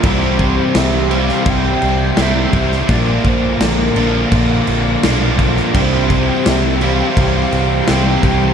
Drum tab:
CC |x-x-x-x-x-x-x-x-|x-x-x-x-x-x-x-x-|x-x-x-x-x-x-x-x-|
SD |----o--o----o--o|----o-------o--o|----o-------o---|
BD |o-o-----o-----o-|o-o-----o-----o-|o-o-----o-----o-|